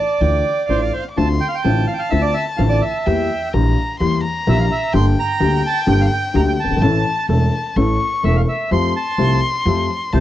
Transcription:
0.00 0.80 D5 medium
0.00 0.23 A5 medium
0.21 0.41 D2 medium
0.21 0.42 D2 medium
0.21 0.42 D3 medium
0.21 0.41 E3 medium
0.21 0.42 A3 medium
0.21 0.42 D4 medium
0.21 0.42 F4 medium
0.21 0.68 G5 medium
0.68 0.89 A1 medium
0.68 0.90 A1 medium
0.68 0.90 A2 medium
0.68 0.90 E3 medium
0.68 0.90 A3 medium
0.68 0.90 D4 medium
0.68 0.90 F4 medium
0.68 0.81 C5 medium
0.68 1.07 F5 medium
0.81 0.93 D5 medium
0.93 1.04 C5 medium
1.10 1.19 D6 soft
1.17 1.37 D2 medium
1.17 1.37 D3 medium
1.17 1.37 A3 medium
1.17 1.38 C4 medium
1.17 1.37 F4 medium
1.17 1.28 A5 medium
1.17 1.64 C6 medium
1.41 1.47 G5 medium
1.48 1.55 F5 medium
1.55 1.86 G5 medium
1.64 1.84 A1 medium
1.64 1.85 A1 medium
1.64 1.85 A2 medium
1.64 1.84 D3 medium
1.64 1.84 A3 medium
1.64 1.85 C4 medium
1.64 1.85 F4 medium
1.64 3.08 A5 medium
1.87 1.93 F5 medium
1.94 2.00 G5 medium
1.99 2.11 F5 medium
2.10 2.32 D2 medium
2.10 2.32 D3 medium
2.10 2.32 A3 medium
2.10 2.32 C4 medium
2.10 2.32 F4 medium
2.10 2.22 E5 medium
2.22 2.34 D5 medium
2.34 2.45 E5 medium
2.57 2.79 A1 medium
2.57 2.79 A2 medium
2.57 2.79 D3 medium
2.57 2.79 A3 medium
2.57 2.79 C4 medium
2.57 2.79 F4 medium
2.57 2.63 F5 medium
2.69 2.82 D5 medium
2.81 3.49 E5 medium
3.06 3.26 E2 medium
3.06 3.26 E3 medium
3.06 3.26 G3 medium
3.06 3.26 A#3 medium
3.06 3.26 G4 medium
3.06 3.55 G5 medium
3.53 3.73 A#1 medium
3.53 3.73 A#2 medium
3.53 3.73 E3 medium
3.53 3.73 G3 medium
3.53 3.74 A#3 medium
3.53 3.74 G4 medium
3.53 3.99 A#5 medium
4.00 4.20 E2 medium
4.00 4.20 E3 medium
4.00 4.20 G3 medium
4.00 4.20 A#3 medium
4.00 4.20 G4 medium
4.00 4.22 C6 medium
4.23 4.94 A#5 medium
4.47 4.67 A#1 loud
4.47 4.67 A#1 medium
4.47 4.67 A#2 medium
4.47 4.66 E3 medium
4.47 4.67 G3 medium
4.47 4.67 A#3 medium
4.47 4.67 G4 medium
4.47 4.59 E5 medium
4.60 4.65 F5 medium
4.72 4.93 E5 medium
4.93 5.13 G1 medium
4.93 5.13 G2 medium
4.93 5.13 D3 medium
4.93 5.13 G3 medium
4.93 5.13 A#3 medium
4.93 5.13 G4 medium
4.93 6.83 G5 loud
4.93 5.06 C6 loud
5.19 5.62 A#5 loud
5.40 5.60 D2 medium
5.40 5.60 D3 medium
5.40 5.60 G3 medium
5.40 5.60 A#3 medium
5.40 5.60 G4 medium
5.66 5.87 A5 loud
5.87 6.07 G1 medium
5.87 6.07 G1 loud
5.87 6.07 G2 medium
5.87 6.07 D3 medium
5.87 6.07 G3 medium
5.87 6.07 A#3 medium
5.87 6.07 G4 medium
5.87 6.00 G5 medium
6.01 6.06 F5 medium
6.13 6.23 G5 medium
6.34 6.54 D2 medium
6.34 6.55 D2 loud
6.34 6.54 D3 medium
6.34 6.54 G3 medium
6.34 6.54 A#3 medium
6.34 6.54 G4 medium
6.34 6.41 A#5 medium
6.48 6.53 G5 medium
6.60 7.26 A5 medium
6.64 6.70 F#1 medium
6.64 6.70 F#1 soft
6.70 6.76 G1 medium
6.76 6.82 G#1 medium
6.76 6.81 G#1 medium
6.82 7.01 A1 medium
6.82 7.02 A1 medium
6.82 7.02 A2 medium
6.82 7.02 E3 medium
6.82 7.02 A3 medium
6.82 7.02 C#4 medium
6.82 7.02 A4 medium
6.82 7.29 A5 medium
7.29 7.49 E1 medium
7.29 7.49 E2 medium
7.29 7.49 E3 medium
7.29 7.49 A3 medium
7.29 7.49 C#4 medium
7.29 7.49 A4 medium
7.29 7.78 A5 medium
7.76 7.96 A1 medium
7.76 7.96 A2 medium
7.76 7.96 E3 medium
7.76 7.96 A3 medium
7.76 7.96 C#4 medium
7.76 7.96 A4 medium
7.76 8.47 C#6 medium
8.23 8.43 E1 medium
8.23 8.44 E1 medium
8.23 8.43 E2 medium
8.23 8.44 E3 medium
8.23 8.44 A3 medium
8.23 8.44 C#4 medium
8.23 8.44 A4 medium
8.23 8.36 E5 medium
8.37 8.42 F5 medium
8.49 8.70 E5 medium
8.71 8.91 F2 medium
8.71 8.91 F3 medium
8.71 8.91 A3 medium
8.71 8.91 C4 medium
8.71 8.91 G4 medium
8.71 10.14 C6 loud
8.71 8.94 C6 loud
8.97 9.40 A5 medium
9.18 9.38 C2 medium
9.18 9.39 C3 medium
9.18 9.38 F3 medium
9.18 9.38 A3 medium
9.18 9.39 C4 medium
9.18 9.39 G4 medium
9.65 9.86 F2 medium
9.65 9.86 F3 medium
9.65 9.86 A3 medium
9.65 9.86 C4 medium
9.65 9.86 G4 medium
10.13 10.20 C2 medium
10.13 10.20 C3 medium
10.13 10.20 F3 medium
10.13 10.20 A3 medium
10.13 10.20 C4 medium
10.13 10.20 G4 medium
10.13 10.19 C5 medium
10.13 10.20 A5 loud

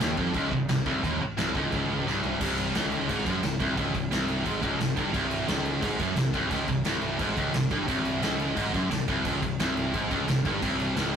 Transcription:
0.00 0.17 D#1 loud
0.00 0.17 D#2 loud
0.00 snare loud
0.00 crash medium
0.17 0.34 F1 medium
0.17 0.33 F2 loud
0.17 kick loud
0.33 0.50 C#1 loud
0.33 0.50 C#2 loud
0.33 kick loud
0.33 crash medium
0.51 0.68 C1 medium
0.51 0.65 C2 medium
0.51 kick loud
0.69 0.85 C1 medium
0.69 0.83 C2 medium
0.69 snare loud
0.69 crash medium
0.86 1.02 C1 medium
0.86 1.03 C2 loud
0.86 kick loud
1.03 1.19 D#1 medium
1.03 1.21 D#2 loud
1.03 kick loud
1.03 crash medium
1.21 muted picked electric bass stroke soft
1.21 muted distorted electric guitar stroke medium
1.38 1.54 C1 loud
1.38 1.54 C2 loud
1.38 snare loud
1.38 crash medium
1.55 1.71 C#1 loud
1.55 1.72 C#2 loud
1.55 kick loud
1.72 2.04 C#1 medium
1.72 2.06 C#2 loud
1.72 kick loud
1.72 crash medium
2.07 2.39 C1 medium
2.07 2.40 C2 loud
2.07 snare medium
2.24 floor tom medium
2.41 2.72 C1 medium
2.41 2.75 C2 loud
2.41 kick loud
2.41 crash loud
2.41 crash medium
2.58 crash medium
2.75 3.07 C#1 loud
2.75 3.09 C#2 loud
2.75 snare loud
2.75 crash medium
2.92 crash medium
3.09 3.25 G#1 loud
3.09 3.26 G#2 loud
3.09 kick loud
3.09 crash medium
3.26 3.42 F#1 medium
3.26 3.43 F#2 loud
3.26 kick loud
3.26 crash medium
3.43 3.59 C1 medium
3.43 3.57 C2 medium
3.43 snare loud
3.43 crash medium
3.60 3.76 C1 loud
3.60 3.77 C2 loud
3.60 kick loud
3.60 crash medium
3.77 3.93 C#1 medium
3.77 3.94 C#2 loud
3.77 kick loud
3.77 crash medium
3.94 4.10 C1 medium
3.94 4.08 C2 medium
3.94 kick medium
3.94 crash medium
4.11 4.43 C1 loud
4.11 4.46 C2 loud
4.11 snare loud
4.11 crash medium
4.28 crash medium
4.46 4.62 G#1 loud
4.46 4.62 G#2 loud
4.46 kick medium
4.46 crash medium
4.63 4.78 C#1 medium
4.63 4.79 C#2 loud
4.63 kick loud
4.63 crash medium
4.79 4.95 C1 medium
4.79 4.94 C2 medium
4.79 snare loud
4.79 crash medium
4.97 5.13 G1 loud
4.97 5.14 G2 loud
4.97 kick loud
4.97 crash medium
5.14 5.46 C1 loud
5.14 5.48 C2 loud
5.14 kick loud
5.14 crash medium
5.31 crash medium
5.48 5.80 C#1 medium
5.48 5.82 C#2 loud
5.48 snare loud
5.48 crash medium
5.65 crash medium
5.82 5.98 G#1 loud
5.82 5.99 G#2 loud
5.82 kick loud
5.82 crash medium
5.99 6.15 F#1 medium
5.99 6.15 F#2 loud
5.99 kick loud
5.99 crash medium
6.16 6.33 C1 medium
6.16 6.30 C2 medium
6.16 snare loud
6.16 crash medium
6.33 6.50 C1 medium
6.33 6.50 C2 loud
6.33 kick loud
6.33 crash medium
6.51 6.67 C#1 loud
6.51 6.68 C#2 loud
6.51 kick loud
6.51 crash medium
6.68 6.84 C1 medium
6.68 6.82 C2 medium
6.68 kick medium
6.68 crash medium
6.84 7.17 C1 medium
6.84 7.19 C2 loud
6.84 snare loud
6.84 crash medium
7.01 crash medium
7.19 7.36 G#1 medium
7.19 7.36 G#2 loud
7.19 kick loud
7.19 crash medium
7.37 7.53 C#1 loud
7.37 7.54 C#2 loud
7.37 kick loud
7.37 crash medium
7.54 7.70 C1 medium
7.54 7.68 C2 medium
7.54 snare loud
7.54 crash medium
7.71 7.87 G1 medium
7.71 7.87 G2 loud
7.71 kick loud
7.71 crash medium
7.88 8.20 C1 loud
7.88 8.22 C2 loud
7.88 kick loud
7.88 crash medium
8.05 crash medium
8.22 8.54 C#1 medium
8.22 8.56 C#2 loud
8.22 snare loud
8.22 crash medium
8.40 crash medium
8.56 8.73 G#1 loud
8.56 8.73 G#2 loud
8.56 kick loud
8.56 crash medium
8.74 8.90 F#1 medium
8.74 8.91 F#2 loud
8.74 kick loud
8.74 crash medium
8.91 9.07 C1 medium
8.91 9.05 C2 medium
8.91 snare loud
8.91 crash medium
9.08 9.24 C1 medium
9.08 9.25 C2 loud
9.08 kick loud
9.08 crash medium
9.25 9.41 C#1 loud
9.25 9.42 C#2 loud
9.25 kick loud
9.25 crash medium
9.42 9.58 C1 medium
9.42 9.56 C2 medium
9.42 kick medium
9.42 crash medium
9.59 9.91 C1 loud
9.59 9.94 C2 loud
9.59 snare loud
9.59 crash medium
9.77 crash medium
9.94 10.10 G#1 loud
9.94 10.10 G#2 loud
9.94 kick loud
9.94 crash medium
10.11 10.27 C#1 loud
10.11 10.27 C#2 loud
10.11 kick loud
10.11 crash medium
10.28 10.44 C1 medium
10.28 10.42 C2 medium
10.28 snare loud
10.28 crash medium
10.45 10.61 G1 loud
10.45 10.62 G2 loud
10.45 kick loud
10.45 crash medium
10.62 10.94 C1 loud
10.62 10.96 C2 loud
10.62 kick loud
10.62 crash medium
10.80 crash medium
10.96 11.16 C#1 loud
10.96 11.16 C#2 loud
10.96 snare loud
10.96 crash medium

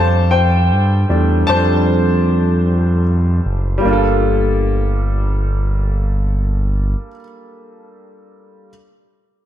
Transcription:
0.00 0.73 F2 loud
0.00 0.26 G3 soft
0.00 0.27 A3 soft
0.00 0.27 D4 medium
0.00 3.85 A4 medium
0.00 0.28 C5 medium
0.00 3.85 F5 medium
0.00 0.32 A5 medium
0.31 1.05 C5 medium
0.31 1.05 G5 medium
0.71 1.05 G2 medium
1.09 1.44 E2 medium
1.09 1.44 G3 soft
1.09 1.44 A3 soft
1.09 1.45 D4 soft
1.47 3.41 F2 medium
1.47 3.76 G3 soft
1.47 3.79 A3 soft
1.47 3.80 D4 medium
1.47 3.01 C5 medium
1.47 3.00 A5 medium
3.46 3.80 F#1 medium
3.78 7.08 G3 medium
3.78 7.11 A#3 medium
3.85 6.95 G1 medium
3.85 7.15 D4 medium
3.85 7.19 F4 soft
3.93 7.23 A4 medium

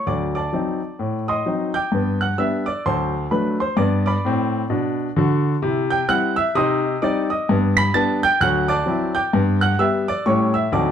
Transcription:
0.07 0.47 D2 medium
0.07 0.34 F#3 soft
0.07 0.34 D5 soft
0.07 0.32 D6 medium
0.35 1.25 D5 medium
0.35 1.25 A5 medium
0.35 1.14 D6 medium
0.53 0.79 F#3 soft
0.53 0.79 C4 soft
0.53 0.80 D#4 soft
0.99 1.39 A2 medium
1.28 1.72 D#5 medium
1.28 1.72 C6 medium
1.28 1.68 D#6 medium
1.46 1.72 F#3 soft
1.46 1.72 C4 soft
1.46 1.72 D#4 soft
1.74 2.18 G5 medium
1.74 2.18 D6 medium
1.74 2.14 G6 medium
1.92 2.32 G2 medium
1.92 2.20 B3 soft
2.21 2.38 F#5 medium
2.21 2.36 F#6 medium
2.38 2.64 G3 soft
2.38 2.64 B3 soft
2.38 2.64 D4 soft
2.38 2.66 E5 medium
2.38 2.63 E6 medium
2.66 2.84 D5 medium
2.66 2.82 D6 medium
2.86 3.25 D2 medium
2.86 3.13 F#3 soft
2.86 3.29 C5 medium
2.86 3.29 A5 medium
2.86 3.25 C6 medium
3.31 3.57 F#3 soft
3.31 3.57 A3 soft
3.31 3.57 D4 soft
3.31 3.58 B4 medium
3.31 3.55 B5 medium
3.60 3.77 C5 medium
3.60 3.75 C6 medium
3.77 4.14 G2 medium
3.77 4.15 B3 medium
3.77 4.04 D5 medium
3.77 4.01 D6 medium
4.06 4.95 D5 medium
4.06 4.95 B5 medium
4.06 4.85 D6 medium
4.25 4.62 A2 medium
4.25 4.62 C4 medium
4.70 5.07 B2 medium
4.70 5.08 D4 medium
5.17 5.54 D3 medium
5.17 5.54 F#4 medium
5.62 6.02 C3 medium
5.62 5.89 E4 soft
5.90 6.08 G5 medium
5.90 6.06 G6 medium
6.08 6.34 G3 soft
6.08 6.34 C4 medium
6.08 6.35 E4 medium
6.08 6.36 F#5 medium
6.08 6.33 F#6 loud
6.36 6.54 E5 medium
6.36 6.52 E6 loud
6.55 6.95 C3 medium
6.55 6.83 D#4 medium
6.55 6.99 D#5 medium
6.55 6.99 C6 medium
6.55 6.95 D#6 medium
7.02 7.27 G3 soft
7.02 7.28 C4 soft
7.02 7.28 D#4 medium
7.02 7.29 D5 medium
7.02 7.26 D6 medium
7.30 7.47 D#5 medium
7.30 7.45 D#6 medium
7.49 7.88 G2 medium
7.49 7.76 B3 medium
7.77 7.94 B5 medium
7.77 7.92 B6 loud
7.94 8.20 G3 soft
7.94 8.20 B3 medium
7.94 8.20 D4 medium
7.94 8.21 A5 medium
7.94 8.18 A6 loud
8.23 8.40 G5 medium
8.23 8.38 G6 loud
8.41 8.80 D2 medium
8.41 8.67 F#3 medium
8.41 8.68 F#5 medium
8.41 8.65 F#6 loud
8.68 9.12 D5 medium
8.68 9.12 A5 medium
8.68 9.08 D6 loud
8.86 9.11 F#3 soft
8.86 9.12 C4 soft
8.86 9.13 E4 medium
9.15 9.58 G5 medium
9.15 9.58 D6 medium
9.15 9.54 G6 medium
9.33 9.72 G2 medium
9.33 9.60 B3 soft
9.61 9.78 F#5 medium
9.61 9.77 F#6 medium
9.79 10.05 G3 soft
9.79 10.05 B3 soft
9.79 10.05 G4 soft
9.79 10.06 E5 medium
9.79 10.03 E6 medium
10.08 10.25 D5 medium
10.08 10.23 D6 medium
10.26 10.65 A2 medium
10.26 10.51 G3 soft
10.26 10.51 A3 soft
10.26 10.53 C#4 medium
10.26 10.52 E4 soft
10.26 10.53 C#5 medium
10.26 10.50 C#6 medium
10.54 10.71 E5 medium
10.54 10.69 E6 medium
10.72 10.92 D2 medium
10.72 10.74 F#3 soft
10.72 10.92 F#3 soft
10.72 10.92 C4 soft
10.72 10.92 D#4 soft
10.72 10.92 D5 soft
10.72 10.92 A5 medium
10.72 10.92 D6 medium

